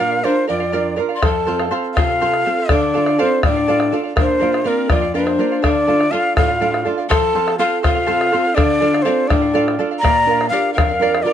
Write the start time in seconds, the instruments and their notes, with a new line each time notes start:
Already playing: nylon-string guitar A#2, pan flute A#4, quena F5
0.00 nylon-string guitar D4 F4 A#4, charango A#4 D5 F5
0.11 charango D5 F5
0.24 nylon-string guitar D4 F4 A#4, pan flute D4, charango A#4 D5 F5, quena C5
0.47 nylon-string guitar F2, pan flute F4, charango A#4 D5 F5, quena D5
0.60 charango D5 F5
0.72 nylon-string guitar D4 F4 A#4, charango A#4 D5 F5
0.96 nylon-string guitar D4 F4 A#4, charango A#4 D5 F5
1.09 charango D5 F5
1.15 pan flute D5, quena C6
1.22 nylon-string guitar F2, charango A4 C5 F5, pan flute A4, quena A5, bombo rim, bombo low
1.46 nylon-string guitar C4 F4 A4, charango A4 C5 F5, bombo rim
1.59 charango C5 F5, bombo rim
1.71 nylon-string guitar C4 F4 A4, charango A4 C5 F5
1.94 nylon-string guitar C3, pan flute F4, charango A4, quena F5, bombo rim, bombo low
1.98 charango C5 F5
2.09 charango C5 F5
2.21 nylon-string guitar C4 F4 A4, charango A4 C5 F5
2.34 bombo rim
2.46 nylon-string guitar C4 F4 A4, charango A4 C5 F5
2.58 charango C5 F5
2.69 nylon-string guitar D3, pan flute D4, charango A4 D5 F5, quena D5, bombo rim, bombo low
2.94 nylon-string guitar D4 F4 A4, charango A4 D5 F5, bombo rim
3.06 charango D5 F5, bombo rim
3.18 nylon-string guitar D4 F4, charango A4 D5 F5, quena C5
3.22 pan flute C4, nylon-string guitar A4
3.43 nylon-string guitar A2, pan flute D4, charango A4 D5 F5, quena D5, bombo rim, bombo low
3.56 charango D5 F5
3.68 nylon-string guitar D4 F4 A4, charango A4 D5 F5
3.80 bombo rim
3.92 nylon-string guitar D4 F4 A4, charango A4 D5 F5
4.04 charango D5 F5
4.16 nylon-string guitar A#2, pan flute D4, charango A#4 D5 F5, bombo rim, bombo low
4.21 quena C5
4.40 nylon-string guitar A#3 D4 F4, charango A#4 D5 F5, bombo rim
4.53 charango D5 F5, bombo rim
4.64 nylon-string guitar A#3 D4 F4, pan flute C4, charango A#4 D5 F5, quena A#4
4.88 nylon-string guitar F2, pan flute F4, charango A#4 D5 F5, quena D5, bombo rim, bombo low
5.02 charango D5 F5
5.14 nylon-string guitar A#3 D4 F4, pan flute D4, charango A#4 D5 F5, quena C5
5.27 bombo rim
5.38 nylon-string guitar A#3 D4 F4, charango A#4 D5 F5
5.52 charango D5 F5
5.62 nylon-string guitar D3, pan flute D4, charango A4 D5 F5, quena D5, bombo rim, bombo low
5.87 nylon-string guitar A3 D4 F4, charango A4 D5 F5, bombo rim
5.99 charango D5 F5, bombo rim
6.11 nylon-string guitar A3 D4 F4, pan flute F4, charango A4 D5 F5, quena F5
6.37 nylon-string guitar A2, pan flute F4, charango A4 D5 F5, quena F5, bombo rim, bombo low
6.48 charango D5 F5
6.61 nylon-string guitar A3 D4 F4, charango A4 D5 F5
6.74 bombo rim
6.85 nylon-string guitar A3 D4 F4, charango A4 D5 F5, bombo rim
6.98 charango D5 F5
7.09 nylon-string guitar F3, pan flute A4, charango A4 C5 F5, quena A5, bombo rim, bombo low
7.34 nylon-string guitar C4 F4 A4, charango A4 C5 F5, bombo rim
7.47 charango C5 F5, bombo rim
7.59 nylon-string guitar C4 F4 A4, pan flute F4, charango A4 C5 F5, quena F5
7.83 nylon-string guitar C3, pan flute F4, charango A4 C5 F5, quena F5, bombo rim, bombo low
7.95 charango C5 F5
8.07 nylon-string guitar C4 F4 A4, charango A4 C5 F5
8.21 bombo rim
8.32 nylon-string guitar C4 F4 A4, charango A4 C5 F5
8.44 charango C5 F5
8.55 nylon-string guitar D3, pan flute D4, charango A4 D5 F5, quena D5, bombo rim, bombo low
8.80 nylon-string guitar D4 F4 A4, charango A4 D5 F5, bombo rim
8.93 charango D5 F5, bombo rim
9.02 pan flute C4, charango A4 D5 F5, quena C5
9.06 nylon-string guitar D4 F4 A4
9.28 nylon-string guitar A2, pan flute D4, charango A4 D5 F5, quena D5, bombo rim, bombo low
9.41 charango D5 F5
9.54 nylon-string guitar D4 F4 A4, charango A4 D5 F5
9.68 bombo rim
9.79 nylon-string guitar D4 F4 A4, charango A4 D5 F5
9.91 charango D5 F5
9.99 nylon-string guitar A#2, pan flute D5, quena A#5
10.04 charango A#4 D5 F5, bombo rim, bombo low
10.26 nylon-string guitar D4 F4 A#4, charango A#4 D5, bombo rim
10.30 charango F5
10.40 charango D5 F5, bombo rim
10.49 nylon-string guitar D4 F4 A#4, pan flute G4, charango A#4 D5 F5, quena F5
10.74 nylon-string guitar F2, pan flute A#4, quena F5
10.78 charango A#4 D5 F5, bombo rim, bombo low
10.89 charango D5 F5
10.99 nylon-string guitar D4 F4 A#4, charango A#4 D5 F5
11.15 bombo rim
11.23 nylon-string guitar D4 F4 A#4, pan flute F4, charango A#4, quena D5
11.27 charango D5 F5